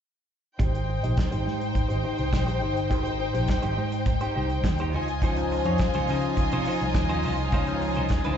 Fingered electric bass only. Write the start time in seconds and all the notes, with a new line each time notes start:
0.60 G#1
1.04 A#1
1.32 G#1
1.47 G#2
1.90 G#1
2.19 C2
2.33 A#1
2.63 G1
2.91 G#1
3.35 A#1
3.63 G#1
3.78 G#2
4.36 C2
4.64 D#2
4.93 C#2
5.65 F2
5.95 C#2
6.09 C#3
6.53 C3
6.81 C2
6.95 D#2
7.25 C2
7.53 C#2
7.97 C2
8.27 C#2